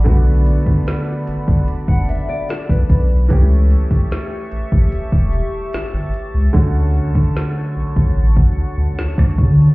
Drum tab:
HH |x-x-x-x-x-x-x-x-|x-x-x-x-x-x-x-x-|----------------|
SD |----o-------o---|----o-------o---|----o-------or--|
BD |o--o---o-o---oo-|o--o---o-o------|o--o---o-o---oo-|